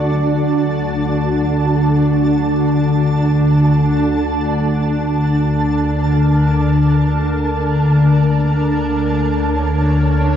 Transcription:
Already playing: synth drone D2 D3, ambient pad D4 F#4 D5, synth texture A5
4.86 ambient pad A#4
8.42 ambient pad C#5

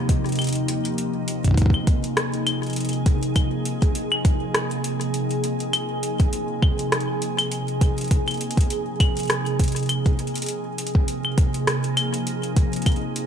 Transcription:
Already playing: ambient pad D#2 C3 F3 A#3 D#4 G4
0.09 kick, closed hi-hat
0.26 closed hi-hat
0.29 closed hi-hat
0.32 closed hi-hat
0.35 closed hi-hat
0.39 closed hi-hat, claves
0.42 closed hi-hat
0.44 closed hi-hat
0.47 closed hi-hat
0.49 closed hi-hat
0.53 closed hi-hat
0.55 closed hi-hat
0.68 closed hi-hat
0.85 closed hi-hat
0.98 closed hi-hat
1.28 closed hi-hat
1.44 kick, closed hi-hat
1.48 kick
1.51 kick
1.54 kick, closed hi-hat
1.58 kick
1.62 kick
1.66 kick
1.70 kick
1.74 claves
1.79 ambient pad G#4
1.87 kick, closed hi-hat
2.04 closed hi-hat
2.17 cross-stick, closed hi-hat
2.34 closed hi-hat
2.47 closed hi-hat, claves
2.63 closed hi-hat
2.67 closed hi-hat
2.70 closed hi-hat
2.73 closed hi-hat
2.76 closed hi-hat
2.80 closed hi-hat
2.85 closed hi-hat
2.89 closed hi-hat
2.93 closed hi-hat
3.06 kick, closed hi-hat
3.23 closed hi-hat
3.36 kick, closed hi-hat, claves
3.65 closed hi-hat
3.82 kick, closed hi-hat
3.95 closed hi-hat
4.12 claves
4.25 kick, closed hi-hat
4.55 cross-stick, closed hi-hat
4.71 closed hi-hat
4.84 closed hi-hat
5.01 closed hi-hat
5.14 closed hi-hat
5.31 closed hi-hat
5.44 closed hi-hat
5.60 closed hi-hat
5.73 ambient pad C3, closed hi-hat, claves
6.03 closed hi-hat
6.20 kick, closed hi-hat
6.33 closed hi-hat
6.62 kick, claves
6.79 closed hi-hat
6.92 cross-stick, closed hi-hat
7.00 closed hi-hat
7.22 closed hi-hat
7.39 closed hi-hat, claves
7.52 closed hi-hat
7.68 closed hi-hat
7.81 kick, closed hi-hat
7.98 closed hi-hat
8.01 closed hi-hat
8.04 closed hi-hat
8.08 closed hi-hat
8.11 kick, closed hi-hat
8.28 closed hi-hat, claves
8.31 closed hi-hat
8.34 closed hi-hat
8.37 closed hi-hat
8.41 closed hi-hat
8.51 closed hi-hat
8.57 kick, closed hi-hat
8.61 closed hi-hat
8.70 closed hi-hat
9.00 kick, closed hi-hat, claves
9.17 closed hi-hat
9.19 closed hi-hat
9.23 closed hi-hat
9.25 closed hi-hat
9.28 cross-stick, closed hi-hat
9.30 closed hi-hat
9.46 closed hi-hat
9.59 kick, closed hi-hat
9.64 closed hi-hat
9.68 closed hi-hat
9.72 closed hi-hat
9.76 closed hi-hat
9.79 closed hi-hat
9.83 closed hi-hat
9.86 closed hi-hat
9.89 closed hi-hat, claves
10.06 kick, closed hi-hat
10.19 closed hi-hat
10.27 closed hi-hat
10.36 closed hi-hat
10.38 closed hi-hat
10.42 closed hi-hat
10.46 closed hi-hat
10.49 closed hi-hat
10.76 ambient pad A#3, closed hi-hat
10.87 closed hi-hat
10.95 kick
11.08 ambient pad F3, closed hi-hat
11.25 claves
11.31 ambient pad D#4
11.38 kick, closed hi-hat
11.54 closed hi-hat
11.67 cross-stick, closed hi-hat
11.84 closed hi-hat
11.97 closed hi-hat, claves
12.14 closed hi-hat
12.27 closed hi-hat
12.43 closed hi-hat
12.56 kick, closed hi-hat
12.73 closed hi-hat
12.76 closed hi-hat
12.82 closed hi-hat
12.86 kick, closed hi-hat, claves
12.92 closed hi-hat
12.96 closed hi-hat
13.16 closed hi-hat

